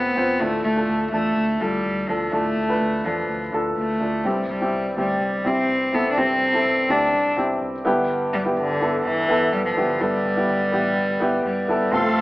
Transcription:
0.00 0.13 F1 medium
0.00 0.43 C3 soft
0.00 0.42 B3 medium
0.00 0.16 C4 medium
0.00 0.17 F4 medium
0.00 0.42 A4 medium
0.00 0.42 B4 medium
0.00 0.18 C5 medium
0.16 0.37 F1 medium
0.16 0.34 C4 medium
0.16 0.34 F4 medium
0.16 0.35 C5 medium
0.40 0.61 D2 medium
0.40 1.09 A2 medium
0.40 0.63 A3 medium
0.40 0.67 D4 medium
0.40 0.67 F4 medium
0.40 0.68 A4 medium
0.64 0.84 D2 medium
0.64 1.09 A3 medium
0.76 1.03 D4 medium
0.76 1.03 F4 medium
0.76 1.04 A4 medium
0.89 1.09 D2 medium
1.12 1.33 E2 medium
1.12 1.62 A3 medium
1.12 1.47 D4 medium
1.12 1.48 F4 medium
1.12 1.48 A4 medium
1.37 1.57 D2 medium
1.60 1.81 D2 medium
1.60 2.10 G3 medium
1.60 1.96 D4 medium
1.60 1.96 F4 medium
1.60 1.97 A4 medium
1.85 2.05 D2 medium
2.08 2.29 D2 medium
2.08 2.34 F3 medium
2.08 2.26 D4 medium
2.08 2.27 F4 medium
2.08 2.27 A4 medium
2.32 2.53 D2 medium
2.32 3.01 A2 medium
2.32 3.07 A3 medium
2.32 2.59 D4 medium
2.32 2.59 F4 medium
2.32 2.60 A4 medium
2.57 2.77 D2 medium
2.68 2.95 D4 medium
2.68 2.95 F4 soft
2.68 2.96 B4 medium
2.81 3.01 D2 medium
3.04 3.25 E2 medium
3.04 3.53 F3 medium
3.04 3.40 D4 medium
3.04 3.40 F4 medium
3.04 3.41 A4 medium
3.29 3.49 D2 medium
3.52 3.73 D2 medium
3.52 3.88 D4 medium
3.52 3.88 F4 medium
3.52 3.89 A4 medium
3.77 3.97 D2 medium
3.77 4.27 A3 medium
4.00 4.21 D2 medium
4.00 4.18 D4 medium
4.00 4.19 F4 soft
4.00 4.19 A4 medium
4.24 4.45 C2 medium
4.24 4.93 G2 soft
4.24 4.49 G3 medium
4.24 4.51 C4 medium
4.24 4.52 E4 soft
4.24 4.52 G4 medium
4.49 4.69 C2 medium
4.49 4.94 G3 medium
4.60 4.87 C4 medium
4.60 4.88 E4 medium
4.60 4.88 G4 medium
4.73 4.93 C2 medium
4.97 5.17 D2 medium
4.97 5.48 G3 medium
4.97 5.32 C4 soft
4.97 5.32 E4 soft
4.97 5.33 G4 medium
5.21 5.41 C2 medium
5.45 5.65 C2 medium
5.45 5.80 C4 medium
5.45 5.96 C4 medium
5.45 5.81 E4 medium
5.45 5.81 G4 medium
5.69 5.89 C2 medium
5.93 6.13 C2 medium
5.93 6.11 B3 medium
5.93 6.11 C4 medium
5.93 6.11 E4 medium
5.93 6.12 A4 medium
6.11 6.19 D4 medium
6.16 6.37 C2 medium
6.16 6.85 G2 medium
6.16 6.43 C4 medium
6.16 6.92 C4 loud
6.16 6.44 E4 medium
6.16 6.44 G4 medium
6.42 6.61 C2 medium
6.53 6.79 C4 medium
6.53 6.80 E4 medium
6.53 6.80 A4 medium
6.66 6.85 C2 medium
6.88 7.09 D2 medium
6.88 7.24 C4 medium
6.88 7.38 D4 medium
6.88 7.24 E4 soft
6.88 7.25 G4 medium
7.13 7.33 C2 medium
7.37 7.57 C2 medium
7.37 7.72 C4 medium
7.37 7.73 E4 medium
7.37 7.73 G4 medium
7.61 7.81 C2 medium
7.85 8.25 G1 medium
7.85 8.53 G2 medium
7.85 8.53 D3 medium
7.85 8.33 B3 medium
7.85 8.34 E4 medium
7.85 8.34 G4 medium
8.33 8.53 G1 medium
8.33 8.44 G3 medium
8.45 8.71 B3 medium
8.45 8.72 E4 medium
8.45 8.72 G4 medium
8.57 8.77 G1 medium
8.57 9.02 D3 medium
8.81 9.01 G1 medium
8.81 9.16 B3 medium
8.81 9.16 E4 soft
8.81 9.17 A4 medium
9.05 9.25 G1 medium
9.05 9.54 E3 medium
9.28 9.49 G1 medium
9.28 9.64 B3 medium
9.28 9.64 E4 medium
9.28 9.65 A4 medium
9.53 9.73 G1 medium
9.53 9.65 G3 medium
9.65 10.02 F3 medium
9.76 9.97 G1 medium
9.76 10.45 G2 soft
9.76 10.45 D3 medium
9.76 9.94 B3 medium
9.76 9.95 E4 medium
9.76 9.95 G4 medium
10.00 10.21 G1 medium
10.00 11.45 G3 medium
10.00 10.27 B3 medium
10.00 10.27 E4 medium
10.00 10.28 A4 medium
10.25 10.45 G1 medium
10.36 10.63 B3 medium
10.36 10.63 E4 medium
10.36 10.64 G4 medium
10.49 10.69 G1 medium
10.72 10.93 A1 medium
10.72 11.08 B3 medium
10.72 11.08 E4 medium
10.72 11.09 G4 medium
10.97 11.17 G1 medium
11.20 11.41 G1 medium
11.20 11.56 B3 medium
11.20 11.56 E4 medium
11.20 11.57 G4 medium
11.45 11.65 G1 medium
11.45 11.95 G3 medium
11.68 11.89 G1 medium
11.68 11.86 B3 medium
11.68 11.87 E4 medium
11.68 11.87 A4 medium
11.92 12.21 F1 medium
11.92 12.21 C3 soft
11.92 12.21 A3 loud
11.92 12.21 C4 medium
11.92 12.21 F4 medium
11.92 12.21 A4 medium
11.92 12.21 F5 medium
11.92 12.21 C6 medium

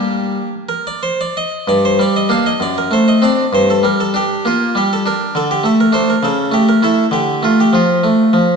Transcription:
0.00 0.36 G3 medium
0.00 0.47 A#3 soft
0.00 0.47 D4 soft
0.00 0.53 G4 medium
0.69 0.85 A#4 medium
0.87 1.02 D5 medium
1.03 1.19 C5 medium
1.21 1.36 D5 medium
1.37 1.68 D#5 medium
1.68 1.98 G2 soft
1.68 1.84 D5 medium
1.85 2.00 C5 medium
1.99 2.32 G3 soft
1.99 2.15 D5 medium
2.16 2.31 D#5 medium
2.29 2.52 A#3 soft
2.29 2.52 D4 soft
2.29 2.46 F5 medium
2.46 2.61 D#5 medium
2.60 2.90 F#2 soft
2.60 2.77 D5 medium
2.78 2.92 A#4 medium
2.91 3.23 A3 soft
2.91 3.08 C5 medium
3.08 3.23 D#5 medium
3.22 3.44 C4 soft
3.22 3.44 D4 soft
3.22 3.53 D5 medium
3.53 3.82 G2 soft
3.53 3.69 C5 medium
3.70 3.84 A4 medium
3.83 4.15 G3 soft
3.83 3.99 A#4 medium
4.00 4.15 A4 medium
4.14 4.46 D4 soft
4.14 4.45 G4 medium
4.45 4.77 A#3 soft
4.45 4.76 F4 medium
4.75 5.06 G3 soft
4.75 4.91 G4 medium
4.93 5.06 A4 medium
5.06 5.35 D4 soft
5.06 5.35 A#4 medium
5.35 5.63 D3 medium
5.35 5.50 A4 medium
5.51 5.65 G4 medium
5.64 5.91 A3 soft
5.64 5.79 A4 medium
5.80 5.94 A#4 medium
5.92 6.14 A3 soft
5.92 6.14 D4 soft
5.92 6.08 C5 medium
6.10 6.24 A#4 medium
6.23 6.52 C#3 medium
6.23 6.53 A4 medium
6.51 6.81 A3 soft
6.51 6.68 G4 medium
6.69 6.83 A#4 medium
6.82 7.04 A3 soft
6.82 7.04 E4 soft
6.82 7.09 A4 medium
7.11 7.42 D3 medium
7.11 7.43 G4 medium
7.43 7.75 A3 soft
7.43 7.59 F4 medium
7.60 7.75 G4 medium
7.73 8.05 F3 soft
7.73 8.05 F4 medium
8.04 8.35 A3 soft
8.33 8.56 F3 soft

